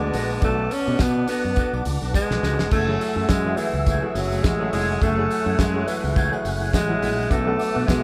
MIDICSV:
0, 0, Header, 1, 9, 480
1, 0, Start_track
1, 0, Key_signature, 3, "minor"
1, 0, Tempo, 573614
1, 357, Time_signature, 4, 2, 24, 8
1, 6721, End_track
2, 0, Start_track
2, 0, Title_t, "Tonewheel organ"
2, 0, Program_c, 0, 16
2, 0, Note_on_c, 0, 71, 79
2, 0, Note_on_c, 0, 78, 63
2, 0, Note_on_c, 0, 81, 67
2, 0, Note_on_c, 0, 86, 84
2, 322, Note_off_c, 0, 81, 0
2, 373, Note_on_c, 0, 81, 66
2, 2234, Note_off_c, 0, 71, 0
2, 2234, Note_off_c, 0, 86, 0
2, 2243, Note_off_c, 0, 78, 0
2, 2264, Note_off_c, 0, 81, 0
2, 2269, Note_on_c, 0, 76, 66
2, 2269, Note_on_c, 0, 80, 72
2, 2270, Note_on_c, 0, 78, 58
2, 2277, Note_on_c, 0, 88, 79
2, 4177, Note_off_c, 0, 88, 0
2, 4207, Note_on_c, 0, 90, 80
2, 6081, Note_off_c, 0, 80, 0
2, 6099, Note_on_c, 0, 86, 84
2, 6102, Note_on_c, 0, 71, 70
2, 6104, Note_off_c, 0, 90, 0
2, 6721, Note_off_c, 0, 71, 0
2, 6721, Note_off_c, 0, 76, 0
2, 6721, Note_off_c, 0, 78, 0
2, 6721, Note_off_c, 0, 86, 0
2, 6721, End_track
3, 0, Start_track
3, 0, Title_t, "Horn section"
3, 0, Program_c, 1, 61
3, 0, Note_on_c, 1, 59, 71
3, 0, Note_on_c, 1, 74, 79
3, 0, Note_on_c, 1, 81, 73
3, 2000, Note_off_c, 1, 59, 0
3, 2000, Note_off_c, 1, 74, 0
3, 2000, Note_off_c, 1, 81, 0
3, 3230, Note_on_c, 1, 57, 79
3, 3231, Note_on_c, 1, 68, 88
3, 3232, Note_on_c, 1, 73, 87
3, 5841, Note_off_c, 1, 57, 0
3, 5842, Note_off_c, 1, 68, 0
3, 5842, Note_off_c, 1, 73, 0
3, 6721, End_track
4, 0, Start_track
4, 0, Title_t, "Clean electric guitar"
4, 0, Program_c, 2, 27
4, 0, Note_on_c, 2, 69, 59
4, 9, Note_on_c, 2, 66, 47
4, 13, Note_on_c, 2, 62, 53
4, 94, Note_off_c, 2, 69, 0
4, 100, Note_off_c, 2, 62, 0
4, 100, Note_off_c, 2, 66, 0
4, 110, Note_on_c, 2, 62, 86
4, 117, Note_on_c, 2, 66, 74
4, 123, Note_on_c, 2, 69, 89
4, 237, Note_off_c, 2, 69, 0
4, 245, Note_off_c, 2, 66, 0
4, 256, Note_off_c, 2, 62, 0
4, 347, Note_on_c, 2, 62, 70
4, 355, Note_on_c, 2, 66, 90
4, 360, Note_on_c, 2, 69, 81
4, 472, Note_off_c, 2, 69, 0
4, 482, Note_off_c, 2, 66, 0
4, 494, Note_off_c, 2, 62, 0
4, 729, Note_on_c, 2, 69, 66
4, 737, Note_on_c, 2, 66, 65
4, 742, Note_on_c, 2, 62, 55
4, 819, Note_off_c, 2, 69, 0
4, 823, Note_off_c, 2, 66, 0
4, 826, Note_off_c, 2, 62, 0
4, 1072, Note_on_c, 2, 62, 81
4, 1078, Note_on_c, 2, 66, 88
4, 1084, Note_on_c, 2, 69, 79
4, 1204, Note_off_c, 2, 69, 0
4, 1213, Note_off_c, 2, 66, 0
4, 1217, Note_off_c, 2, 62, 0
4, 1318, Note_on_c, 2, 62, 71
4, 1324, Note_on_c, 2, 66, 82
4, 1331, Note_on_c, 2, 69, 88
4, 1445, Note_off_c, 2, 69, 0
4, 1453, Note_off_c, 2, 66, 0
4, 1459, Note_off_c, 2, 62, 0
4, 1686, Note_on_c, 2, 69, 60
4, 1692, Note_on_c, 2, 66, 57
4, 1699, Note_on_c, 2, 62, 55
4, 1777, Note_off_c, 2, 69, 0
4, 1780, Note_off_c, 2, 66, 0
4, 1784, Note_off_c, 2, 62, 0
4, 1930, Note_on_c, 2, 69, 67
4, 1939, Note_on_c, 2, 66, 60
4, 1945, Note_on_c, 2, 62, 51
4, 2019, Note_off_c, 2, 69, 0
4, 2023, Note_off_c, 2, 66, 0
4, 2026, Note_off_c, 2, 62, 0
4, 2039, Note_on_c, 2, 62, 83
4, 2045, Note_on_c, 2, 66, 94
4, 2052, Note_on_c, 2, 69, 86
4, 2163, Note_off_c, 2, 69, 0
4, 2172, Note_off_c, 2, 66, 0
4, 2180, Note_off_c, 2, 62, 0
4, 2280, Note_on_c, 2, 57, 75
4, 2284, Note_on_c, 2, 64, 75
4, 2295, Note_on_c, 2, 68, 82
4, 2404, Note_off_c, 2, 68, 0
4, 2415, Note_off_c, 2, 64, 0
4, 2420, Note_off_c, 2, 57, 0
4, 2646, Note_on_c, 2, 68, 67
4, 2653, Note_on_c, 2, 64, 63
4, 2660, Note_on_c, 2, 57, 54
4, 2737, Note_off_c, 2, 68, 0
4, 2741, Note_off_c, 2, 64, 0
4, 2744, Note_off_c, 2, 57, 0
4, 2988, Note_on_c, 2, 57, 69
4, 2997, Note_on_c, 2, 64, 87
4, 3003, Note_on_c, 2, 68, 92
4, 3119, Note_off_c, 2, 68, 0
4, 3129, Note_off_c, 2, 64, 0
4, 3134, Note_off_c, 2, 57, 0
4, 3235, Note_on_c, 2, 57, 83
4, 3246, Note_on_c, 2, 64, 82
4, 3251, Note_on_c, 2, 68, 83
4, 3357, Note_off_c, 2, 68, 0
4, 3367, Note_off_c, 2, 64, 0
4, 3378, Note_off_c, 2, 57, 0
4, 3614, Note_on_c, 2, 68, 67
4, 3621, Note_on_c, 2, 64, 53
4, 3627, Note_on_c, 2, 57, 55
4, 3701, Note_off_c, 2, 68, 0
4, 3704, Note_off_c, 2, 57, 0
4, 3704, Note_off_c, 2, 64, 0
4, 3846, Note_on_c, 2, 68, 70
4, 3854, Note_on_c, 2, 64, 52
4, 3859, Note_on_c, 2, 57, 51
4, 3937, Note_off_c, 2, 68, 0
4, 3941, Note_off_c, 2, 64, 0
4, 3944, Note_off_c, 2, 57, 0
4, 3954, Note_on_c, 2, 57, 87
4, 3962, Note_on_c, 2, 64, 85
4, 3965, Note_on_c, 2, 68, 103
4, 4075, Note_off_c, 2, 68, 0
4, 4083, Note_off_c, 2, 64, 0
4, 4098, Note_off_c, 2, 57, 0
4, 4195, Note_on_c, 2, 57, 91
4, 4201, Note_on_c, 2, 64, 81
4, 4208, Note_on_c, 2, 68, 90
4, 4318, Note_off_c, 2, 68, 0
4, 4328, Note_off_c, 2, 64, 0
4, 4338, Note_off_c, 2, 57, 0
4, 4565, Note_on_c, 2, 68, 66
4, 4570, Note_on_c, 2, 64, 64
4, 4577, Note_on_c, 2, 57, 60
4, 4657, Note_off_c, 2, 68, 0
4, 4660, Note_off_c, 2, 64, 0
4, 4663, Note_off_c, 2, 57, 0
4, 4915, Note_on_c, 2, 57, 79
4, 4921, Note_on_c, 2, 64, 86
4, 4931, Note_on_c, 2, 68, 90
4, 5043, Note_off_c, 2, 68, 0
4, 5050, Note_off_c, 2, 64, 0
4, 5058, Note_off_c, 2, 57, 0
4, 5150, Note_on_c, 2, 57, 96
4, 5160, Note_on_c, 2, 64, 84
4, 5166, Note_on_c, 2, 68, 103
4, 5284, Note_off_c, 2, 68, 0
4, 5293, Note_off_c, 2, 64, 0
4, 5296, Note_off_c, 2, 57, 0
4, 5531, Note_on_c, 2, 68, 67
4, 5538, Note_on_c, 2, 64, 58
4, 5545, Note_on_c, 2, 57, 48
4, 5620, Note_off_c, 2, 68, 0
4, 5624, Note_off_c, 2, 57, 0
4, 5624, Note_off_c, 2, 64, 0
4, 5766, Note_on_c, 2, 68, 61
4, 5772, Note_on_c, 2, 64, 49
4, 5779, Note_on_c, 2, 57, 42
4, 5858, Note_off_c, 2, 68, 0
4, 5861, Note_off_c, 2, 57, 0
4, 5861, Note_off_c, 2, 64, 0
4, 5871, Note_on_c, 2, 57, 81
4, 5879, Note_on_c, 2, 64, 96
4, 5884, Note_on_c, 2, 68, 100
4, 5999, Note_off_c, 2, 68, 0
4, 6012, Note_off_c, 2, 64, 0
4, 6017, Note_off_c, 2, 57, 0
4, 6112, Note_on_c, 2, 62, 86
4, 6118, Note_on_c, 2, 66, 89
4, 6126, Note_on_c, 2, 69, 96
4, 6235, Note_off_c, 2, 69, 0
4, 6242, Note_off_c, 2, 66, 0
4, 6257, Note_off_c, 2, 62, 0
4, 6474, Note_on_c, 2, 69, 76
4, 6478, Note_on_c, 2, 66, 61
4, 6487, Note_on_c, 2, 62, 59
4, 6572, Note_off_c, 2, 69, 0
4, 6575, Note_off_c, 2, 66, 0
4, 6579, Note_off_c, 2, 62, 0
4, 6721, End_track
5, 0, Start_track
5, 0, Title_t, "Grand piano"
5, 0, Program_c, 3, 0
5, 2404, Note_on_c, 3, 54, 80
5, 2409, Note_on_c, 3, 57, 72
5, 2410, Note_on_c, 3, 64, 67
5, 2412, Control_c, 3, 64, 127
5, 2416, Note_on_c, 3, 68, 88
5, 2725, Note_off_c, 3, 54, 0
5, 2727, Note_off_c, 3, 57, 0
5, 2728, Note_off_c, 3, 64, 0
5, 2730, Note_off_c, 3, 68, 0
5, 2891, Note_on_c, 3, 54, 75
5, 2896, Note_on_c, 3, 57, 71
5, 2898, Note_on_c, 3, 64, 67
5, 2903, Note_on_c, 3, 68, 91
5, 3208, Note_off_c, 3, 54, 0
5, 3211, Note_off_c, 3, 57, 0
5, 3212, Note_off_c, 3, 64, 0
5, 3214, Note_off_c, 3, 68, 0
5, 3368, Note_on_c, 3, 54, 79
5, 3371, Note_on_c, 3, 57, 75
5, 3371, Note_on_c, 3, 64, 69
5, 3377, Note_on_c, 3, 68, 85
5, 3686, Note_off_c, 3, 54, 0
5, 3688, Note_off_c, 3, 57, 0
5, 3688, Note_off_c, 3, 64, 0
5, 3691, Note_off_c, 3, 68, 0
5, 3843, Note_on_c, 3, 54, 85
5, 3849, Note_on_c, 3, 57, 87
5, 3853, Note_on_c, 3, 64, 81
5, 3858, Note_on_c, 3, 68, 99
5, 4164, Note_off_c, 3, 54, 0
5, 4168, Note_off_c, 3, 57, 0
5, 4169, Note_off_c, 3, 64, 0
5, 4172, Note_off_c, 3, 68, 0
5, 4322, Note_on_c, 3, 54, 80
5, 4324, Note_on_c, 3, 57, 66
5, 4331, Note_on_c, 3, 64, 72
5, 4334, Note_on_c, 3, 68, 93
5, 4644, Note_off_c, 3, 54, 0
5, 4645, Note_off_c, 3, 57, 0
5, 4649, Note_off_c, 3, 64, 0
5, 4650, Note_off_c, 3, 68, 0
5, 4797, Note_on_c, 3, 54, 72
5, 4800, Note_on_c, 3, 57, 75
5, 4804, Note_on_c, 3, 64, 70
5, 4810, Note_on_c, 3, 68, 86
5, 5122, Note_off_c, 3, 54, 0
5, 5123, Note_off_c, 3, 57, 0
5, 5125, Note_off_c, 3, 64, 0
5, 5128, Note_off_c, 3, 68, 0
5, 5278, Note_on_c, 3, 54, 79
5, 5282, Note_on_c, 3, 57, 75
5, 5284, Note_on_c, 3, 64, 74
5, 5292, Note_on_c, 3, 68, 83
5, 5603, Note_off_c, 3, 54, 0
5, 5604, Note_off_c, 3, 57, 0
5, 5606, Note_off_c, 3, 64, 0
5, 5610, Note_off_c, 3, 68, 0
5, 5761, Note_on_c, 3, 54, 88
5, 5769, Note_on_c, 3, 56, 87
5, 5772, Note_on_c, 3, 64, 79
5, 5773, Note_on_c, 3, 68, 96
5, 6085, Note_off_c, 3, 54, 0
5, 6088, Note_off_c, 3, 56, 0
5, 6090, Note_off_c, 3, 64, 0
5, 6090, Note_off_c, 3, 68, 0
5, 6127, Control_c, 3, 64, 0
5, 6246, Note_on_c, 3, 54, 85
5, 6250, Note_on_c, 3, 59, 78
5, 6250, Note_on_c, 3, 62, 72
5, 6256, Control_c, 3, 64, 127
5, 6257, Note_on_c, 3, 69, 100
5, 6567, Note_off_c, 3, 54, 0
5, 6569, Note_off_c, 3, 59, 0
5, 6569, Note_off_c, 3, 62, 0
5, 6573, Note_off_c, 3, 69, 0
5, 6721, End_track
6, 0, Start_track
6, 0, Title_t, "Alto saxophone"
6, 0, Program_c, 4, 65
6, 0, Note_on_c, 4, 56, 93
6, 361, Note_off_c, 4, 56, 0
6, 368, Note_on_c, 4, 57, 108
6, 604, Note_on_c, 4, 61, 104
6, 617, Note_off_c, 4, 57, 0
6, 844, Note_on_c, 4, 59, 110
6, 857, Note_off_c, 4, 61, 0
6, 1072, Note_off_c, 4, 59, 0
6, 1077, Note_on_c, 4, 59, 91
6, 1538, Note_off_c, 4, 59, 0
6, 1802, Note_on_c, 4, 56, 109
6, 2245, Note_off_c, 4, 56, 0
6, 2277, Note_on_c, 4, 57, 113
6, 2753, Note_on_c, 4, 56, 116
6, 2765, Note_off_c, 4, 57, 0
6, 2990, Note_on_c, 4, 52, 94
6, 3002, Note_off_c, 4, 56, 0
6, 3470, Note_on_c, 4, 54, 94
6, 3483, Note_off_c, 4, 52, 0
6, 3717, Note_on_c, 4, 56, 97
6, 3730, Note_off_c, 4, 54, 0
6, 3954, Note_off_c, 4, 56, 0
6, 3959, Note_on_c, 4, 56, 99
6, 4200, Note_on_c, 4, 57, 114
6, 4212, Note_off_c, 4, 56, 0
6, 4680, Note_on_c, 4, 56, 101
6, 4693, Note_off_c, 4, 57, 0
6, 4918, Note_on_c, 4, 52, 82
6, 4930, Note_off_c, 4, 56, 0
6, 5412, Note_off_c, 4, 52, 0
6, 5638, Note_on_c, 4, 56, 106
6, 6113, Note_on_c, 4, 57, 115
6, 6125, Note_off_c, 4, 56, 0
6, 6586, Note_on_c, 4, 56, 110
6, 6598, Note_off_c, 4, 57, 0
6, 6721, Note_off_c, 4, 56, 0
6, 6721, End_track
7, 0, Start_track
7, 0, Title_t, "Fretless electric bass"
7, 0, Program_c, 5, 35
7, 115, Note_on_c, 5, 34, 93
7, 318, Note_off_c, 5, 34, 0
7, 357, Note_on_c, 5, 35, 113
7, 558, Note_off_c, 5, 35, 0
7, 732, Note_on_c, 5, 47, 110
7, 820, Note_off_c, 5, 47, 0
7, 836, Note_on_c, 5, 47, 81
7, 1038, Note_off_c, 5, 47, 0
7, 1210, Note_on_c, 5, 42, 77
7, 1299, Note_off_c, 5, 42, 0
7, 1449, Note_on_c, 5, 35, 78
7, 1550, Note_off_c, 5, 35, 0
7, 1555, Note_on_c, 5, 37, 104
7, 1668, Note_off_c, 5, 37, 0
7, 1690, Note_on_c, 5, 35, 87
7, 1779, Note_off_c, 5, 35, 0
7, 1930, Note_on_c, 5, 35, 99
7, 2019, Note_off_c, 5, 35, 0
7, 2033, Note_on_c, 5, 37, 86
7, 2147, Note_off_c, 5, 37, 0
7, 2170, Note_on_c, 5, 29, 80
7, 2272, Note_off_c, 5, 29, 0
7, 2277, Note_on_c, 5, 30, 110
7, 2478, Note_off_c, 5, 30, 0
7, 2645, Note_on_c, 5, 42, 87
7, 2736, Note_off_c, 5, 42, 0
7, 2755, Note_on_c, 5, 42, 96
7, 2957, Note_off_c, 5, 42, 0
7, 3126, Note_on_c, 5, 37, 89
7, 3329, Note_off_c, 5, 37, 0
7, 3474, Note_on_c, 5, 30, 96
7, 3676, Note_off_c, 5, 30, 0
7, 3720, Note_on_c, 5, 33, 107
7, 3920, Note_off_c, 5, 33, 0
7, 3956, Note_on_c, 5, 29, 101
7, 4158, Note_off_c, 5, 29, 0
7, 4200, Note_on_c, 5, 30, 107
7, 4400, Note_off_c, 5, 30, 0
7, 4570, Note_on_c, 5, 42, 101
7, 4659, Note_off_c, 5, 42, 0
7, 4678, Note_on_c, 5, 42, 98
7, 4879, Note_off_c, 5, 42, 0
7, 5053, Note_on_c, 5, 37, 88
7, 5254, Note_off_c, 5, 37, 0
7, 5397, Note_on_c, 5, 30, 87
7, 5599, Note_off_c, 5, 30, 0
7, 5636, Note_on_c, 5, 33, 101
7, 5839, Note_off_c, 5, 33, 0
7, 5876, Note_on_c, 5, 34, 84
7, 6079, Note_off_c, 5, 34, 0
7, 6120, Note_on_c, 5, 35, 112
7, 6321, Note_off_c, 5, 35, 0
7, 6493, Note_on_c, 5, 47, 89
7, 6582, Note_off_c, 5, 47, 0
7, 6602, Note_on_c, 5, 47, 96
7, 6721, Note_off_c, 5, 47, 0
7, 6721, End_track
8, 0, Start_track
8, 0, Title_t, "Muted clean electric guitar strokes"
8, 247, Note_on_c, 9, 29, 55
8, 331, Note_off_c, 9, 29, 0
8, 482, Note_on_c, 9, 29, 46
8, 565, Note_off_c, 9, 29, 0
8, 591, Note_on_c, 9, 29, 37
8, 675, Note_off_c, 9, 29, 0
8, 1215, Note_on_c, 9, 29, 52
8, 1298, Note_off_c, 9, 29, 0
8, 1455, Note_on_c, 9, 29, 52
8, 1538, Note_off_c, 9, 29, 0
8, 1558, Note_on_c, 9, 29, 45
8, 1641, Note_off_c, 9, 29, 0
8, 1798, Note_on_c, 9, 29, 50
8, 1882, Note_off_c, 9, 29, 0
8, 2173, Note_on_c, 9, 29, 54
8, 2257, Note_off_c, 9, 29, 0
8, 2414, Note_on_c, 9, 29, 38
8, 2498, Note_off_c, 9, 29, 0
8, 2525, Note_on_c, 9, 29, 34
8, 2608, Note_off_c, 9, 29, 0
8, 3129, Note_on_c, 9, 29, 43
8, 3213, Note_off_c, 9, 29, 0
8, 3367, Note_on_c, 9, 29, 33
8, 3451, Note_off_c, 9, 29, 0
8, 3475, Note_on_c, 9, 29, 56
8, 3558, Note_off_c, 9, 29, 0
8, 3714, Note_on_c, 9, 29, 45
8, 3797, Note_off_c, 9, 29, 0
8, 4085, Note_on_c, 9, 29, 43
8, 4169, Note_off_c, 9, 29, 0
8, 4328, Note_on_c, 9, 29, 46
8, 4412, Note_off_c, 9, 29, 0
8, 4438, Note_on_c, 9, 29, 43
8, 4522, Note_off_c, 9, 29, 0
8, 5053, Note_on_c, 9, 29, 47
8, 5137, Note_off_c, 9, 29, 0
8, 5294, Note_on_c, 9, 29, 44
8, 5377, Note_off_c, 9, 29, 0
8, 5402, Note_on_c, 9, 29, 42
8, 5486, Note_off_c, 9, 29, 0
8, 5634, Note_on_c, 9, 29, 38
8, 5718, Note_off_c, 9, 29, 0
8, 6009, Note_on_c, 9, 29, 49
8, 6093, Note_off_c, 9, 29, 0
8, 6246, Note_on_c, 9, 29, 50
8, 6329, Note_off_c, 9, 29, 0
8, 6347, Note_on_c, 9, 29, 40
8, 6431, Note_off_c, 9, 29, 0
8, 6721, End_track
9, 0, Start_track
9, 0, Title_t, "Drums"
9, 113, Note_on_c, 9, 46, 66
9, 124, Note_on_c, 9, 54, 52
9, 197, Note_off_c, 9, 46, 0
9, 208, Note_off_c, 9, 54, 0
9, 253, Note_on_c, 9, 54, 35
9, 337, Note_off_c, 9, 54, 0
9, 350, Note_on_c, 9, 42, 59
9, 353, Note_on_c, 9, 36, 118
9, 355, Note_on_c, 9, 54, 56
9, 433, Note_off_c, 9, 42, 0
9, 437, Note_off_c, 9, 36, 0
9, 439, Note_off_c, 9, 54, 0
9, 595, Note_on_c, 9, 46, 68
9, 595, Note_on_c, 9, 54, 56
9, 678, Note_off_c, 9, 46, 0
9, 679, Note_off_c, 9, 54, 0
9, 828, Note_on_c, 9, 38, 127
9, 830, Note_on_c, 9, 42, 72
9, 832, Note_on_c, 9, 36, 114
9, 840, Note_on_c, 9, 54, 82
9, 912, Note_off_c, 9, 38, 0
9, 914, Note_off_c, 9, 42, 0
9, 916, Note_off_c, 9, 36, 0
9, 924, Note_off_c, 9, 54, 0
9, 1067, Note_on_c, 9, 46, 67
9, 1075, Note_on_c, 9, 54, 66
9, 1151, Note_off_c, 9, 46, 0
9, 1159, Note_off_c, 9, 54, 0
9, 1306, Note_on_c, 9, 42, 64
9, 1313, Note_on_c, 9, 36, 105
9, 1318, Note_on_c, 9, 54, 60
9, 1390, Note_off_c, 9, 42, 0
9, 1397, Note_off_c, 9, 36, 0
9, 1401, Note_off_c, 9, 54, 0
9, 1452, Note_on_c, 9, 54, 34
9, 1535, Note_off_c, 9, 54, 0
9, 1550, Note_on_c, 9, 46, 65
9, 1556, Note_on_c, 9, 54, 51
9, 1634, Note_off_c, 9, 46, 0
9, 1640, Note_off_c, 9, 54, 0
9, 1692, Note_on_c, 9, 54, 41
9, 1775, Note_off_c, 9, 54, 0
9, 1792, Note_on_c, 9, 38, 61
9, 1795, Note_on_c, 9, 36, 102
9, 1800, Note_on_c, 9, 54, 96
9, 1876, Note_off_c, 9, 38, 0
9, 1878, Note_off_c, 9, 36, 0
9, 1884, Note_off_c, 9, 54, 0
9, 1932, Note_on_c, 9, 38, 72
9, 2015, Note_off_c, 9, 38, 0
9, 2036, Note_on_c, 9, 38, 80
9, 2050, Note_on_c, 9, 54, 51
9, 2119, Note_off_c, 9, 38, 0
9, 2134, Note_off_c, 9, 54, 0
9, 2169, Note_on_c, 9, 38, 103
9, 2177, Note_on_c, 9, 54, 35
9, 2253, Note_off_c, 9, 38, 0
9, 2260, Note_off_c, 9, 54, 0
9, 2269, Note_on_c, 9, 49, 81
9, 2273, Note_on_c, 9, 36, 110
9, 2283, Note_on_c, 9, 54, 55
9, 2353, Note_off_c, 9, 49, 0
9, 2357, Note_off_c, 9, 36, 0
9, 2367, Note_off_c, 9, 54, 0
9, 2518, Note_on_c, 9, 54, 51
9, 2519, Note_on_c, 9, 46, 58
9, 2602, Note_off_c, 9, 54, 0
9, 2603, Note_off_c, 9, 46, 0
9, 2751, Note_on_c, 9, 38, 122
9, 2753, Note_on_c, 9, 42, 64
9, 2754, Note_on_c, 9, 36, 103
9, 2764, Note_on_c, 9, 54, 83
9, 2835, Note_off_c, 9, 38, 0
9, 2837, Note_off_c, 9, 42, 0
9, 2838, Note_off_c, 9, 36, 0
9, 2848, Note_off_c, 9, 54, 0
9, 2989, Note_on_c, 9, 46, 58
9, 2994, Note_on_c, 9, 54, 57
9, 3073, Note_off_c, 9, 46, 0
9, 3078, Note_off_c, 9, 54, 0
9, 3234, Note_on_c, 9, 42, 65
9, 3237, Note_on_c, 9, 36, 107
9, 3242, Note_on_c, 9, 54, 59
9, 3318, Note_off_c, 9, 42, 0
9, 3321, Note_off_c, 9, 36, 0
9, 3326, Note_off_c, 9, 54, 0
9, 3476, Note_on_c, 9, 46, 70
9, 3479, Note_on_c, 9, 54, 62
9, 3559, Note_off_c, 9, 46, 0
9, 3563, Note_off_c, 9, 54, 0
9, 3615, Note_on_c, 9, 54, 41
9, 3698, Note_off_c, 9, 54, 0
9, 3717, Note_on_c, 9, 36, 111
9, 3718, Note_on_c, 9, 42, 67
9, 3719, Note_on_c, 9, 38, 121
9, 3719, Note_on_c, 9, 54, 82
9, 3801, Note_off_c, 9, 36, 0
9, 3801, Note_off_c, 9, 42, 0
9, 3803, Note_off_c, 9, 38, 0
9, 3803, Note_off_c, 9, 54, 0
9, 3957, Note_on_c, 9, 46, 69
9, 3974, Note_on_c, 9, 54, 51
9, 4040, Note_off_c, 9, 46, 0
9, 4057, Note_off_c, 9, 54, 0
9, 4197, Note_on_c, 9, 36, 109
9, 4200, Note_on_c, 9, 42, 72
9, 4208, Note_on_c, 9, 54, 60
9, 4281, Note_off_c, 9, 36, 0
9, 4284, Note_off_c, 9, 42, 0
9, 4291, Note_off_c, 9, 54, 0
9, 4439, Note_on_c, 9, 54, 50
9, 4444, Note_on_c, 9, 46, 62
9, 4523, Note_off_c, 9, 54, 0
9, 4528, Note_off_c, 9, 46, 0
9, 4676, Note_on_c, 9, 38, 119
9, 4677, Note_on_c, 9, 36, 111
9, 4679, Note_on_c, 9, 42, 70
9, 4685, Note_on_c, 9, 54, 85
9, 4760, Note_off_c, 9, 36, 0
9, 4760, Note_off_c, 9, 38, 0
9, 4762, Note_off_c, 9, 42, 0
9, 4769, Note_off_c, 9, 54, 0
9, 4917, Note_on_c, 9, 46, 69
9, 4918, Note_on_c, 9, 54, 65
9, 5001, Note_off_c, 9, 46, 0
9, 5002, Note_off_c, 9, 54, 0
9, 5058, Note_on_c, 9, 54, 44
9, 5142, Note_off_c, 9, 54, 0
9, 5157, Note_on_c, 9, 36, 122
9, 5157, Note_on_c, 9, 42, 64
9, 5164, Note_on_c, 9, 54, 64
9, 5240, Note_off_c, 9, 42, 0
9, 5241, Note_off_c, 9, 36, 0
9, 5248, Note_off_c, 9, 54, 0
9, 5295, Note_on_c, 9, 54, 33
9, 5379, Note_off_c, 9, 54, 0
9, 5397, Note_on_c, 9, 46, 72
9, 5403, Note_on_c, 9, 54, 57
9, 5481, Note_off_c, 9, 46, 0
9, 5487, Note_off_c, 9, 54, 0
9, 5534, Note_on_c, 9, 54, 36
9, 5618, Note_off_c, 9, 54, 0
9, 5636, Note_on_c, 9, 36, 101
9, 5640, Note_on_c, 9, 42, 72
9, 5640, Note_on_c, 9, 54, 92
9, 5641, Note_on_c, 9, 38, 117
9, 5719, Note_off_c, 9, 36, 0
9, 5724, Note_off_c, 9, 42, 0
9, 5724, Note_off_c, 9, 54, 0
9, 5725, Note_off_c, 9, 38, 0
9, 5878, Note_on_c, 9, 46, 72
9, 5886, Note_on_c, 9, 54, 50
9, 5962, Note_off_c, 9, 46, 0
9, 5969, Note_off_c, 9, 54, 0
9, 6013, Note_on_c, 9, 54, 37
9, 6097, Note_off_c, 9, 54, 0
9, 6116, Note_on_c, 9, 36, 110
9, 6119, Note_on_c, 9, 42, 66
9, 6119, Note_on_c, 9, 54, 57
9, 6200, Note_off_c, 9, 36, 0
9, 6202, Note_off_c, 9, 42, 0
9, 6203, Note_off_c, 9, 54, 0
9, 6354, Note_on_c, 9, 54, 53
9, 6368, Note_on_c, 9, 46, 63
9, 6438, Note_off_c, 9, 54, 0
9, 6451, Note_off_c, 9, 46, 0
9, 6597, Note_on_c, 9, 36, 102
9, 6602, Note_on_c, 9, 38, 127
9, 6603, Note_on_c, 9, 54, 92
9, 6604, Note_on_c, 9, 42, 72
9, 6681, Note_off_c, 9, 36, 0
9, 6685, Note_off_c, 9, 38, 0
9, 6687, Note_off_c, 9, 54, 0
9, 6688, Note_off_c, 9, 42, 0
9, 6721, End_track
0, 0, End_of_file